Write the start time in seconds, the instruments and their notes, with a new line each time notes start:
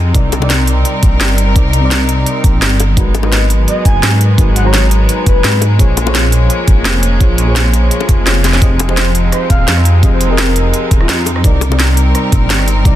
Already playing: detuned saw bass F2, string section F3 G#3 C4 D#4, fm electric piano F3 C4 G4 G#4 D#5
0.13 detuned saw bass C2, fm electric piano C3 C4 D#4 A#4 D5, string section G3 A#4, kick, closed hi-hat
0.32 closed hi-hat, high bongo
0.39 fm electric piano C3 C4 D#4 A#4, high bongo
0.44 fm electric piano D5
0.50 snare, closed hi-hat
0.67 closed hi-hat
0.85 closed hi-hat
1.03 detuned saw bass A#1, kick, closed hi-hat
1.21 detuned saw bass G1, snare, closed hi-hat
1.38 closed hi-hat
1.55 detuned saw bass C2, fm electric piano C3 C4 D#4 A#4 D5, kick, closed hi-hat
1.73 closed hi-hat
1.80 fm electric piano C3 C4 D#4 A#4
1.85 fm electric piano D5
1.91 snare, closed hi-hat
2.09 closed hi-hat
2.26 closed hi-hat
2.44 detuned saw bass A#1, kick, closed hi-hat
2.62 detuned saw bass G1, snare, closed hi-hat
2.80 closed hi-hat, high bongo
2.96 detuned saw bass G#1, string section F#3 G#3 B3, fm electric piano G#3 D#4 F#4 A#4 B4, kick, closed hi-hat
3.15 closed hi-hat, high bongo
3.22 fm electric piano G#3 D#4 F#4 A#4, soft synth lead D#5, high bongo
3.26 fm electric piano B4
3.32 snare, closed hi-hat
3.50 closed hi-hat
3.68 soft synth lead D#5, closed hi-hat
3.85 detuned saw bass F#1, soft synth lead G#5, kick, closed hi-hat
4.03 detuned saw bass G#2, snare, closed hi-hat
4.21 closed hi-hat
4.37 detuned saw bass G#1, fm electric piano G#3 D#4 F#4 A#4 B4, kick, closed hi-hat
4.56 soft synth lead F#5, closed hi-hat
4.63 fm electric piano G#3 D#4 F#4 A#5, soft synth lead C#5
4.68 fm electric piano B4
4.74 snare, closed hi-hat
4.91 closed hi-hat
5.09 closed hi-hat
5.26 detuned saw bass F#1, soft synth lead B4, kick, closed hi-hat
5.44 detuned saw bass G#2, snare, closed hi-hat
5.61 closed hi-hat, high bongo
5.78 detuned saw bass A#1, string section F3 A#3 C#4, fm electric piano A#3 F4 G#4 C5 C#5, kick, closed hi-hat
5.97 closed hi-hat, high bongo
6.04 fm electric piano A#3 F4 G#4 C5, high bongo
6.08 fm electric piano C#5
6.15 snare, closed hi-hat
6.32 closed hi-hat
6.50 closed hi-hat
6.68 detuned saw bass G#1, kick, closed hi-hat
6.85 detuned saw bass F1, snare, closed hi-hat
7.03 closed hi-hat
7.19 detuned saw bass A#1, fm electric piano A#3 F4 G#4 C5 C#5, kick, closed hi-hat
7.38 closed hi-hat
7.45 fm electric piano A#3 F4 G#4 C5
7.50 fm electric piano C#5
7.56 snare, closed hi-hat
7.74 closed hi-hat
7.91 closed hi-hat
8.01 high bongo
8.09 detuned saw bass F1, kick, closed hi-hat
8.25 detuned saw bass F1, fm electric piano A#3 F4 G#4 C5 C#5, snare, closed hi-hat
8.44 snare, closed hi-hat, high bongo
8.53 snare
8.61 detuned saw bass F1, fm electric piano F3 C4 G4 G#4 D#5, string section C4 D#4, kick, closed hi-hat
8.79 closed hi-hat, high bongo
8.86 fm electric piano F3 C4 G4 G#4, soft synth lead C5, high bongo
8.91 fm electric piano D#5
8.97 snare, closed hi-hat
9.15 closed hi-hat
9.32 soft synth lead C5, cross-stick, closed hi-hat
9.50 detuned saw bass D#1, soft synth lead F5, kick, closed hi-hat
9.68 detuned saw bass F2, snare, closed hi-hat
9.77 cross-stick
9.85 closed hi-hat
10.02 detuned saw bass F1, fm electric piano F3 C4 G4 G#4 D#5, kick, closed hi-hat
10.12 soft synth lead C5
10.21 closed hi-hat
10.28 fm electric piano F3 C4 G4 G#4, soft synth lead A#4
10.32 fm electric piano D#5
10.38 snare, closed hi-hat
10.56 closed hi-hat
10.74 closed hi-hat
10.91 detuned saw bass D#1, kick, closed hi-hat
11.01 soft synth lead F4, cross-stick
11.09 detuned saw bass F2, snare, closed hi-hat
11.26 closed hi-hat, high bongo
11.36 cross-stick
11.43 detuned saw bass C2, fm electric piano C3 C4 D#4 A#4 D5, string section G3 C4 A#4, kick, closed hi-hat
11.61 closed hi-hat, high bongo
11.69 fm electric piano C3 C4 D#4 A#4, high bongo
11.73 fm electric piano D5
11.79 snare, closed hi-hat
11.97 closed hi-hat
12.15 cross-stick, closed hi-hat
12.32 detuned saw bass A#1, kick, closed hi-hat
12.50 detuned saw bass G1, snare, closed hi-hat
12.59 cross-stick
12.68 closed hi-hat
12.84 detuned saw bass C2, fm electric piano C3 C4 D#4 A#4 D5, kick, closed hi-hat